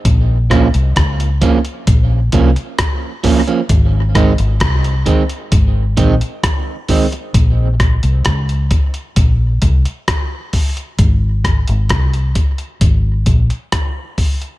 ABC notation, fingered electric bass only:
X:1
M:4/4
L:1/16
Q:1/4=66
K:Bbm
V:1 name="Fingered electric bass" clef=bass
B,,,3 C,, D,,2 z2 B,,,2 C,, z4 z | A,,,3 A,,, C,,2 z2 A,,,2 B,,, z4 z | B,,,3 C,, D,,2 z2 B,,,2 C,, z4 z | A,,,3 A,,, C,,2 z2 A,,,2 B,,, z4 z |]